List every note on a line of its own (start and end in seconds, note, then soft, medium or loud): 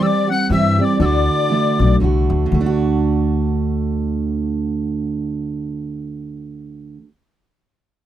0.00 0.27 E3 medium
0.00 0.28 G3 medium
0.00 0.28 C4 medium
0.00 0.26 G4 medium
0.00 0.29 D5 medium
0.00 0.08 E6 loud
0.07 0.30 D6 loud
0.28 0.50 G3 soft
0.28 0.50 C4 soft
0.28 0.49 G4 soft
0.28 0.51 F#5 loud
0.32 0.50 F#6 medium
0.49 0.77 G2 medium
0.49 0.78 E3 medium
0.49 0.79 G3 medium
0.49 0.79 C4 medium
0.49 0.77 G4 medium
0.49 0.80 E5 medium
0.49 0.80 E6 medium
0.79 1.00 G3 soft
0.79 1.01 C4 soft
0.79 1.00 G4 medium
0.79 0.98 D5 medium
0.79 0.85 E6 medium
0.84 1.01 D6 medium
1.00 1.27 D2 loud
1.00 1.49 D3 medium
1.00 1.51 A3 medium
1.00 1.51 D4 loud
1.00 1.53 F#4 medium
1.00 1.96 D5 medium
1.00 1.06 E6 loud
1.05 1.97 D6 loud
1.49 1.78 D3 medium
1.49 1.79 A3 medium
1.49 1.80 D4 medium
1.54 1.78 F#4 medium
1.79 1.99 B1 medium
1.79 2.00 A3 soft
1.79 2.01 D4 soft
1.79 2.00 F#4 medium
2.00 2.27 C2 medium
2.00 2.45 D3 medium
2.00 2.54 A3 medium
2.00 2.60 D4 medium
2.00 2.66 F#4 medium
2.30 2.49 D2 medium
2.46 6.97 D3 medium
2.52 6.98 D2 loud
2.52 7.03 A3 medium
2.61 7.06 D4 medium
2.66 7.09 F#4 loud